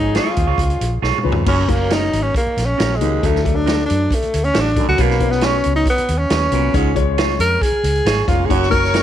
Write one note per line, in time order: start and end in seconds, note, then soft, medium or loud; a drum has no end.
0.00 0.17 G#1 medium
0.00 0.33 F3 medium
0.00 1.22 F3 loud
0.00 0.33 G#3 medium
0.00 1.22 G#3 medium
0.00 0.33 C#4 medium
0.00 1.22 C#4 medium
0.00 0.16 D#4 medium
0.00 0.33 G#4 medium
0.00 1.22 G#4 loud
0.15 0.29 F4 medium
0.15 1.00 F4 medium
0.15 0.29 G#4 medium
0.15 0.29 C#5 medium
0.15 snare medium
0.15 closed hi-hat medium
0.36 0.45 D#2 medium
0.36 kick medium
0.36 closed hi-hat medium
0.47 0.56 C#2 medium
0.47 0.59 F4 soft
0.47 0.59 G#4 medium
0.47 0.59 C#5 medium
0.58 0.74 C#2 medium
0.58 kick medium
0.58 closed hi-hat medium
0.70 closed hi-hat soft
0.81 0.97 A#1 medium
0.81 closed hi-hat medium
1.02 1.11 B1 medium
1.02 1.17 F4 medium
1.02 1.17 G#4 medium
1.02 1.17 C#5 medium
1.02 snare medium
1.18 mid tom medium
1.23 1.33 C#2 medium
1.23 1.42 A#2 medium
1.23 1.40 F3 medium
1.23 1.40 G#3 medium
1.23 1.40 C#4 medium
1.23 1.40 B4 medium
1.32 floor tom loud
1.36 1.44 D#2 medium
1.46 2.10 F#1 loud
1.46 1.65 F#2 loud
1.46 1.62 F#3 medium
1.46 1.62 A#3 medium
1.46 1.62 C#4 medium
1.46 1.71 C#4 medium
1.46 1.62 A#4 medium
1.46 kick medium
1.46 crash medium
1.68 2.31 F#3 medium
1.68 2.31 A#3 medium
1.68 1.95 A#3 medium
1.68 2.32 C#4 medium
1.68 2.31 A#4 medium
1.68 kick medium
1.68 closed hi-hat medium
1.90 2.05 C#4 medium
1.90 2.24 D#4 medium
1.90 2.05 F#4 medium
1.90 2.05 A#4 medium
1.90 snare loud
1.90 closed hi-hat medium
2.13 2.30 G#1 loud
2.13 closed hi-hat medium
2.22 2.36 C#4 medium
2.35 2.67 A#3 medium
2.35 kick medium
2.35 closed hi-hat medium
2.47 muted fingered electric bass stroke soft
2.57 2.73 A#1 medium
2.57 snare soft
2.57 closed hi-hat medium
2.66 2.98 C#4 medium
2.78 3.02 A#1 medium
2.78 2.93 C#4 medium
2.78 2.93 F#4 medium
2.78 2.93 A#4 medium
2.78 snare loud
2.78 closed hi-hat medium
2.97 3.16 F#3 medium
2.97 3.28 G#3 medium
3.01 3.18 C#2 medium
3.01 3.19 D#2 medium
3.01 3.17 A#3 medium
3.01 3.17 C#4 medium
3.01 3.17 D#4 medium
3.01 closed hi-hat medium
3.21 3.86 D2 loud
3.21 3.41 D2 medium
3.21 3.38 F#3 medium
3.21 3.38 A3 medium
3.21 3.38 D4 medium
3.21 3.39 A4 medium
3.21 kick medium
3.21 closed hi-hat medium
3.27 3.57 A3 medium
3.35 snare soft
3.43 4.07 F#3 medium
3.43 4.07 A3 medium
3.43 4.07 D4 medium
3.43 4.07 A4 medium
3.43 kick medium
3.43 closed hi-hat medium
3.56 3.84 D4 medium
3.66 3.81 D4 medium
3.66 3.81 F#4 medium
3.66 3.81 A4 medium
3.66 snare medium
3.66 closed hi-hat medium
3.86 4.16 D4 medium
3.86 closed hi-hat medium
3.91 4.06 F#2 medium
4.11 kick medium
4.11 closed hi-hat medium
4.15 4.46 A3 medium
4.22 muted fingered electric bass stroke soft
4.22 closed hi-hat soft
4.34 4.50 D2 medium
4.34 closed hi-hat medium
4.44 4.62 C#4 loud
4.44 closed hi-hat soft
4.54 4.80 A1 medium
4.54 4.69 D4 medium
4.54 4.69 F#4 loud
4.54 4.69 A4 loud
4.54 snare loud
4.54 closed hi-hat medium
4.60 4.87 D4 medium
4.76 4.95 F#2 medium
4.76 4.92 F#3 medium
4.76 4.93 A3 medium
4.76 4.93 D4 medium
4.76 4.93 A4 medium
4.76 kick medium
4.76 closed hi-hat medium
4.88 4.96 C#2 medium
4.88 5.04 F#4 loud
4.97 5.62 B1 loud
4.97 5.17 B2 loud
4.97 5.14 F#3 medium
4.97 5.14 B3 medium
4.97 5.14 C#4 medium
4.97 5.15 B4 medium
4.97 kick medium
4.97 closed hi-hat medium
5.02 5.32 A#3 loud
5.10 snare soft
5.20 5.83 F#3 medium
5.20 5.83 B3 medium
5.20 5.83 C#4 medium
5.20 5.83 B4 medium
5.20 kick medium
5.20 closed hi-hat medium
5.31 5.47 B3 loud
5.31 snare soft
5.41 5.57 F#4 medium
5.41 5.57 B4 medium
5.41 5.57 C#5 loud
5.41 snare loud
5.41 closed hi-hat medium
5.46 5.74 C#4 medium
5.64 5.82 C#2 loud
5.64 closed hi-hat medium
5.76 5.88 D#4 loud
5.86 kick medium
5.86 closed hi-hat medium
5.90 6.20 B3 loud
5.98 muted fingered electric bass stroke soft
5.98 closed hi-hat soft
6.08 6.25 D#2 medium
6.08 closed hi-hat medium
6.18 7.00 C#4 loud
6.30 6.47 D#2 medium
6.30 6.45 F#4 medium
6.30 6.45 B4 medium
6.30 6.45 C#5 loud
6.30 snare loud
6.30 closed hi-hat medium
6.51 6.68 C2 loud
6.51 6.71 A#2 medium
6.51 6.68 F#3 medium
6.51 6.68 B3 medium
6.51 6.68 C#4 medium
6.51 6.68 B4 medium
6.51 closed hi-hat medium
6.73 7.37 C#2 medium
6.73 6.93 G#2 medium
6.73 6.90 G#3 medium
6.73 6.90 C#4 medium
6.73 6.90 F4 medium
6.73 6.90 C#5 loud
6.73 kick loud
6.73 closed hi-hat medium
6.94 7.58 G#3 medium
6.94 7.58 C#4 medium
6.94 7.58 F4 medium
6.94 7.59 C#5 loud
6.94 kick medium
6.94 closed hi-hat medium
7.18 7.33 F4 medium
7.18 7.33 G#4 medium
7.18 7.33 C#5 medium
7.18 snare loud
7.18 closed hi-hat medium
7.39 7.56 F2 medium
7.39 7.64 A#4 loud
7.39 closed hi-hat medium
7.61 8.28 G#4 loud
7.61 kick medium
7.61 closed hi-hat medium
7.72 muted fingered electric bass stroke soft
7.84 8.00 C#2 medium
7.84 closed hi-hat medium
7.95 closed hi-hat soft
8.05 8.22 G#1 medium
8.05 8.20 F4 medium
8.05 8.21 G#4 medium
8.05 8.21 C#5 medium
8.05 snare loud
8.05 closed hi-hat medium
8.27 8.45 F1 loud
8.27 8.46 A#2 medium
8.27 8.43 G#3 medium
8.27 8.43 C#4 medium
8.27 8.44 F4 medium
8.27 8.47 F4 medium
8.27 8.44 C#5 medium
8.27 kick loud
8.27 closed hi-hat medium
8.46 8.65 A#3 medium
8.46 8.65 C#4 medium
8.46 8.65 F#4 medium
8.46 8.52 G#4 medium
8.50 9.03 F#1 loud
8.50 8.68 F#2 loud
8.50 8.70 F#4 medium
8.50 8.66 C#5 medium
8.50 9.03 C#5 medium
8.50 9.03 C#6 medium
8.50 kick medium
8.50 closed hi-hat medium
8.63 snare soft
8.70 9.03 A#3 medium
8.70 9.03 C#4 medium
8.70 9.03 F#4 medium
8.70 9.03 A#4 loud
8.70 9.03 C#5 medium
8.70 kick medium
8.70 closed hi-hat medium
8.84 snare soft
8.94 9.03 C#4 medium
8.94 9.03 F#4 medium
8.94 9.03 A#4 medium
8.94 snare medium
8.94 closed hi-hat medium